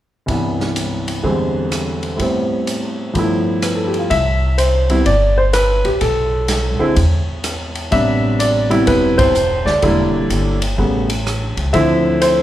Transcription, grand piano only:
0.26 C2 G2 E3
0.31 B3
1.23 E2 D3 G3 G#3 C4
2.17 A2 G3 B3
2.22 C4
3.13 G2 F3 A3 B3
3.19 E4
3.63 B4
3.76 A4
3.87 G4
3.99 F4
4.10 E5
4.58 C5
4.90 C3 G3 B3 E4
5.06 D5
5.38 C5
5.53 B4
5.85 G4
6.01 A4
6.79 D3 G#3 C4 E4
7.91 C3 G3 B3 D4 E5
8.39 D5
8.70 C3 G3 B3 E4
8.87 B4
9.18 C5
9.66 D5
9.82 D3 G3 A#3 E4
10.78 C#3 G3 A3 B3
11.73 D3 F3 C4 E4 E5
12.22 C5

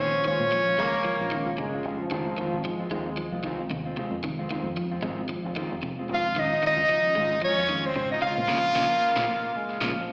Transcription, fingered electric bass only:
0.00 A#1
0.40 A#2
0.67 muted fingered electric bass stroke
0.78 C#2
1.20 A#1
1.46 A#1
1.58 G1
1.85 F1
2.11 F1
2.53 G#1
2.91 D#2
3.32 C2
3.70 D#2
4.11 F2
4.22 F1
4.63 F2
4.90 muted fingered electric bass stroke
5.02 G#1
5.46 F1
5.71 F1
6.09 F1
6.36 A#1
6.77 C#2
7.16 G#1
7.58 F2
7.96 G#1
8.37 A#2
8.49 A#1
8.75 A#1
9.17 A#1
9.82 A#1

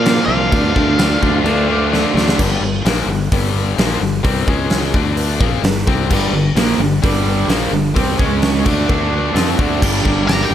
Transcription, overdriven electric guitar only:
0.05 A#2 F3 A#3
0.29 A#2 F3 A#3
0.52 D3 A3 D4
0.75 D3 A3 D4
0.99 D3 A3 D4
1.22 D3 A3 D4
1.46 D3 A3 D4
1.69 D3 A3 D4
1.93 D3 A3 D4
2.16 D3 A3 D4
6.11 G2 D3 G3
6.34 G2 D3
6.57 A#2 F3 A#3
6.81 G2 D3
7.04 G2 D3 G3
7.50 A#2 F3 A#3
7.74 G2 D3
7.97 C3 G3 C4
8.20 C#3 G#3 C#4
8.67 D3 A3 D4
8.89 D3 A3 D4
9.36 F3 C4 F4
9.59 D3 A3 D4
9.82 G2 D3 G3
10.05 G2 D3 G3
10.28 G2 D3 G3

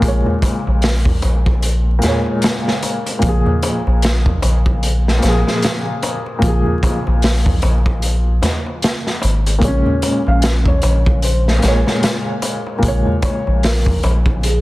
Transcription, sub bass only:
0.03 A#1
0.67 A#1
1.23 A#1
3.23 A#1
3.87 A#1
4.43 A#1
5.23 A#1
6.43 A#1
7.07 A#1
7.64 A#1
9.24 G#1
9.62 A#1
10.27 A#1
10.84 A#1
11.63 A#1
12.83 A#1
13.47 A#1
14.04 A#1

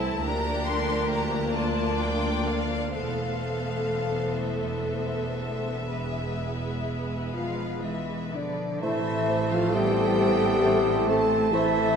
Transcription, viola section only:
Already playing: A3 E4
0.23 A#3 D4
1.54 D4
2.94 A3 B3
5.86 G#3 B3
8.82 E3 A4
11.53 E3 A4

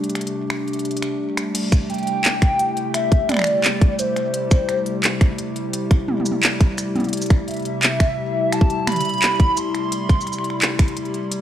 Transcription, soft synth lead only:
1.90 G5
2.94 E5
3.29 D5
3.99 C5
7.48 E5
8.52 A5
8.87 B5
9.57 C6

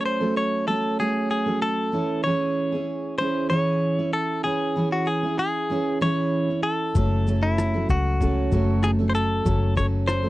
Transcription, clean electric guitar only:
0.01 C#5
0.06 C5
0.37 C#5
0.68 A4
1.00 G#4
1.31 G#4
1.62 A4
2.24 C#5
3.18 C5
3.50 C#5
4.13 A4
4.44 G#4
4.92 F#4
5.07 G#4
5.39 G#4
6.02 C#5
6.63 A4
7.43 E4
7.90 F#4
8.84 G#4
9.10 C5
9.15 A4
9.77 C#5
10.08 C5

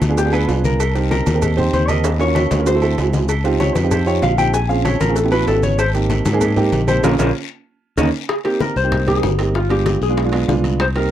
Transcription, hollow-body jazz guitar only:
0.18 G4
0.34 B4
0.65 A#4
1.11 A#4
1.74 C5
1.89 D#5
2.21 C#5
2.67 C5
3.60 C#5
3.75 B4
3.92 C5
4.07 C#5
4.23 F5
4.38 G5
4.54 G#5
4.69 F5
4.85 C#5
5.01 A#4
5.17 A4
5.32 B4
5.48 A4
5.63 C#5
5.79 C5
6.88 C5
7.03 G#4 A#4 C#5
7.19 G#4 A#4 C#5
7.98 A#4 C#5 D#5
8.29 G#4
8.45 G4
8.61 A#4
8.77 C5
9.08 G#4
9.44 G4
9.56 F4
9.71 G4
10.03 G#4
10.81 C5
10.97 A#4

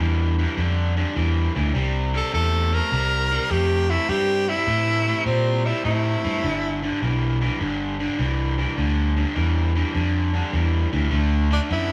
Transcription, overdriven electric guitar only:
0.00 G2 E3
0.39 G2 E3
0.57 G2 D3
0.97 G2 D3
1.16 G2 E3
1.55 G2 E3
1.74 C3 G3
2.13 C3 G3
2.32 C3 A3
2.73 C3 A3
2.91 C3 G3
3.31 C3 G3
3.50 C3 A3
3.90 C3 A3
4.09 C3 G3
4.49 C3 G3
4.67 C3 A3
5.08 C3 A3
5.26 C3 G3
5.65 C3 G3
5.84 C3 A3
6.24 C3 A3
6.43 G2 D3
6.83 G2 D3
7.02 G2 E3
7.41 G2 E3
7.60 G2 D3
7.99 G2 D3
8.18 G2 E3
8.58 G2 E3
8.77 G2 D3
9.16 G2 D3
9.35 G2 E3
9.75 G2 E3
9.94 G2 D3
10.34 G2 D3
10.52 G2 E3
10.92 G2 E3
11.11 D3 A3
11.51 D3 A3
11.70 D3 B3

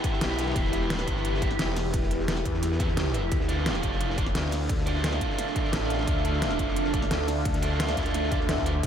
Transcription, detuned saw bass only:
0.21 B1
0.56 E1
1.07 G1
1.59 E1
2.45 E2
3.32 D2
3.83 F1
4.35 D2
5.73 A1
6.08 D2
6.59 F1
7.11 D2
7.97 D2
8.49 D2
8.83 E1

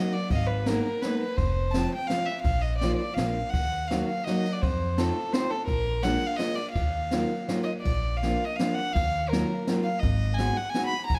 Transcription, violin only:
Already playing: D#5
0.13 D5
0.32 D#5 F5
0.38 D#5
0.46 B4
0.66 A#4
0.84 A#4
1.02 B4
1.20 B4
1.37 C5
1.71 A5
1.95 G5
2.07 F5
2.25 E5
2.42 F5
2.61 D#5
2.78 D5
2.97 D5
3.14 F5
3.32 F5
3.50 F#5
3.87 F5
4.05 F5
4.24 D#5
4.53 D5
4.61 C5
4.99 A4
5.33 C5
5.50 A4
5.67 A#4
6.03 F#5
6.26 F5
6.36 D#5
6.55 D5
6.71 F5
7.63 D#5
7.81 D5
8.17 F5
8.45 D#5
8.55 F5
8.75 F#5
8.93 F5
9.29 A#4
9.84 F5
9.99 D#5
10.34 G#5
10.57 F#5
10.70 G#5
10.87 B5
11.06 A#5
11.14 G#5

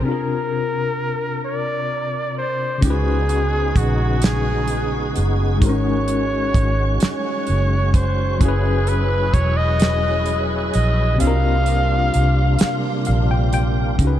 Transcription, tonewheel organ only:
2.82 C#3 G#3 B3 D#4 F#4
5.61 C#4 F#4
8.40 F#3 E4 G#4 B4
11.20 C3 G3 A#3 D4 F4

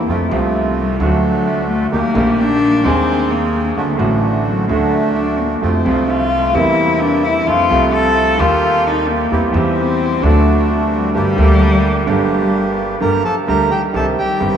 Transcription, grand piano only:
0.08 F2 C3 F3 A3 F4
0.29 C2 C3 F3 A3 F4
1.00 D2 D3 F#3 A3 F#4
1.92 D#2 D#3 G3 A#3 G4
2.14 A#1 A#2 D#3 G3 A#3
2.18 G4
2.83 D#2 D#3 G#3 C4
2.87 G#4
3.77 D2 D3 F#3 A3 F#4
3.96 A1 A2 D3 F#3 A3 F#4
4.68 D2 D3 F#3 A3 F#4
5.61 F2 C3 F3 A3 F4
5.85 C2 C3 F3 A3 F4
6.53 E2 C3 E3 G3 A#3
6.58 E4
7.47 F2 C3 F3 A3 F4
7.71 C2 C3 F3 A3 F4
8.38 D#2 D#3 G3 A#3 G4
9.32 E2 E3 G3 C4 G4
9.53 E2 E3 G3 C4
9.57 G4
10.22 D2 D3 F#3 A3 F#4
11.14 G1 G2 D3 G3 A#3 G4
11.36 D2 D3 G3 A#3
11.40 G4
12.05 G1 G2 D3 G3 A#3 G4
13.00 G1 G2 D3 G3 A#3 G4
13.47 D2 D3 G3 A#3 G4
13.93 C2 C3 D#3 G3 C4 G4
14.40 G1 G2 D#3 G3 C4 G4

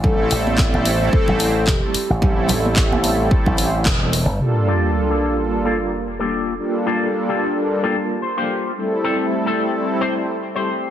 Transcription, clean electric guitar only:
4.67 A#3 F4 G4 A4
5.10 A#3 F4 G4 A4
5.65 A#3 F4 G4 A4
5.92 muted clean electric guitar stroke
6.19 A#3 F4 G4 A4
6.86 A#3 F4 G4 A4
7.29 A#3 F4 G4 A4
7.83 A#3 F4 G4 A4
7.95 A5
8.10 muted clean electric guitar stroke
8.22 C5
8.37 A#3 F4 G4 C5
9.04 C4 G4 A4
9.46 C4 G4 A4
10.01 C4 G4 C5
10.28 muted clean electric guitar stroke
10.55 C4 G4 C5

